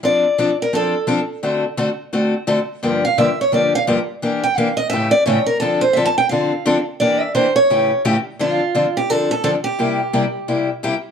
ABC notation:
X:1
M:4/4
L:1/16
Q:"Swing" 1/4=172
K:Dm
V:1 name="Steel-string acoustic guitar"
d6 B2 A4 z4 | z16 | z2 f2 e2 ^c2 d2 f2 z4 | z2 g2 f2 _e2 =e2 d2 ^c2 B2 |
A2 c2 (3e2 a2 g2 f6 z2 | d2 e2 c2 ^c6 z4 | F6 G2 A2 A2 A2 G2- | G8- G2 z6 |]
V:2 name="Steel-string acoustic guitar"
[F,CDA]2 z2 [F,CDA] z3 [F,CDA]2 z2 [F,CDA] z3 | [D,A,C^FA]2 z2 [D,A,CFA] z3 [D,A,CFA]2 z2 [D,A,CFA] z3 | [G,,D,F,B,DG]2 z2 [G,,D,F,B,DG] z3 [G,,D,F,B,DG]2 z2 [G,,D,F,B,DG] z3 | [E,B,DG]2 z2 [E,B,DG] z3 [A,,^C,E,A,^CG]2 z2 [A,,C,E,A,CG] z3 |
[D,F,CDA]2 z2 [D,F,CDA] z3 [D,F,CDA]2 z2 [D,F,CDA] z3 | [E,B,DG]2 z2 [E,B,DG] z3 [A,,^C,E,A,^CG]2 z2 [A,,C,E,A,CG] z3 | [D,F,CDA]2 z2 [D,F,CDA] z3 [D,F,CDA]2 z2 [D,F,CDA] z3 | [C,G,B,EG]2 z2 [C,G,B,EG] z3 [C,G,B,EG]2 z2 [C,G,B,EG] z3 |]